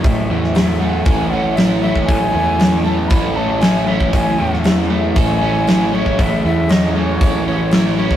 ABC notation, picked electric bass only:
X:1
M:4/4
L:1/8
Q:1/4=117
K:A
V:1 name="Picked electric bass" clef=bass
A,,, E,,3 A,,,4 | A,,, E,,3 A,,,4 | A,,, E,,3 A,,,4 | A,,, E,,3 A,,,4 |]